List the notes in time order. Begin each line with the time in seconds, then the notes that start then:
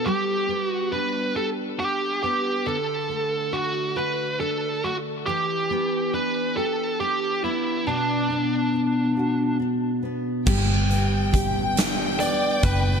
Already playing: B3 D4 F#4
0.06 G3 G4
0.49 B3
0.67 F#4
0.92 D4 B4
1.36 G4 A4
1.80 D4 G4
2.23 B3 G4
2.66 D3 A4
3.09 A3
3.53 D4 F#4
3.96 F#4 B4
4.40 D4 A4
4.84 A3 F#4
5.26 E3 G4
5.70 B3
6.13 D4 B4
6.57 G4 A4
7.00 D4 G4
7.44 B3 E4
7.87 B2 D4
8.30 B3
8.74 D4
9.17 F#4
9.60 D4
10.03 B3
10.46 G1 G3 G4 G5, kick, crash
10.89 B3, closed hi-hat
11.33 G4, kick, closed hi-hat
11.76 D4, snare, closed hi-hat
12.20 B3 D5, closed hi-hat
12.62 F#1 D4 B4, kick, closed hi-hat